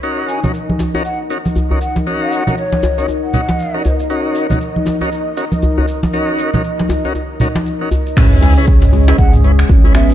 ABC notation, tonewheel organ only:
X:1
M:4/4
L:1/16
Q:"Swing 16ths" 1/4=118
K:D#phr
V:1 name="Tonewheel organ"
[CDFA]3 [CDFA] z3 [CDFA] z2 [CDFA] z2 [CDFA] z2 | [CDFA]3 [CDFA] z3 [CDFA] z2 [CDFA] z2 [CDFA] z2 | [CDFA]3 [CDFA] z3 [CDFA] z2 [CDFA] z2 [CDFA] z2 | [CDFA]3 [CDFA] z3 [CDFA] z2 [CDFA] z2 [CDFA] z2 |
[CEGB]3 [CEGB] z3 [CEGB] z2 [CEGB] z2 [CEGB] z2 |]